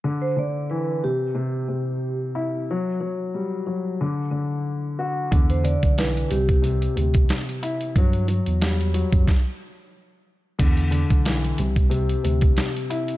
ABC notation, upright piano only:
X:1
M:4/4
L:1/8
Q:"Swing 16ths" 1/4=91
K:Clyd
V:1 name="Upright piano" clef=bass
D, D, E, C, C, C,2 E | F, F, G, F, D, D,2 F | D, D, E, C, C, C,2 E | F, F, G, F, z4 |
D, D, E, C, C, C,2 E |]